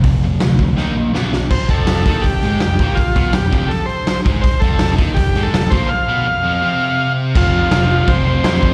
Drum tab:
CC |----------------|x---------------|----------------|----------------|
HH |o---o-----------|--o-o-o-o-o-o-o-|o-o-o-o-o-o-o-o-|o-o-o-o-o-o-o-o-|
SD |----o---o---o-o-|----o-------o---|----o-------o---|----o-------o---|
BD |o-----o---------|o-o---o-o-----o-|o-o---o-------o-|o-o---o-o-----o-|

CC |----------------|x---x---x---x---|
HH |----------------|----------------|
SD |----------------|----o-------oo--|
BD |----------------|o-------o-----o-|